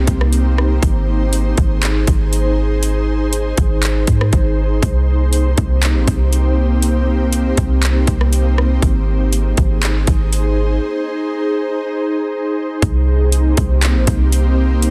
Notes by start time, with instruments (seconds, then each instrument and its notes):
Already playing: ambient pad A#3 C4 D#4 G4 C5
0.07 808-style bass C2, kick, closed hi-hat
0.21 cross-stick
0.33 closed hi-hat
0.58 cross-stick
0.83 808-style bass G#1, ambient pad G#4, kick, closed hi-hat
1.33 closed hi-hat
1.57 808-style bass G#1, kick, closed hi-hat
1.83 clap, closed hi-hat
2.07 808-style bass G#1, kick, closed hi-hat
2.33 closed hi-hat
2.83 closed hi-hat
3.33 closed hi-hat
3.57 808-style bass G#1, kick, closed hi-hat
3.83 clap, closed hi-hat
4.07 808-style bass G#2, kick, closed hi-hat
4.21 cross-stick
4.33 808-style bass G#1, kick, closed hi-hat
4.82 808-style bass C2, ambient pad A#3 C4 G4, kick, closed hi-hat
5.33 closed hi-hat
5.58 808-style bass C2, kick, closed hi-hat
5.83 clap, closed hi-hat
5.95 808-style bass A#1
6.08 808-style bass C2, kick, closed hi-hat
6.33 closed hi-hat
6.82 closed hi-hat
7.33 closed hi-hat
7.57 808-style bass C2, kick, closed hi-hat
7.82 clap, closed hi-hat
8.07 808-style bass C2, kick, closed hi-hat
8.21 cross-stick
8.33 closed hi-hat
8.58 cross-stick
8.82 808-style bass G#1, ambient pad D#4 G#4 C5, kick, closed hi-hat
9.33 closed hi-hat
9.57 808-style bass G#1, kick, closed hi-hat
9.82 clap, closed hi-hat
10.07 808-style bass G#1, kick, closed hi-hat
10.33 closed hi-hat
12.82 808-style bass C2, ambient pad A#3 C4 D#4 G4 C5, kick, closed hi-hat
13.32 closed hi-hat
13.57 808-style bass C2, kick, closed hi-hat
13.82 clap, closed hi-hat
13.95 808-style bass A#1
14.07 808-style bass C2, kick, closed hi-hat
14.32 closed hi-hat
14.82 closed hi-hat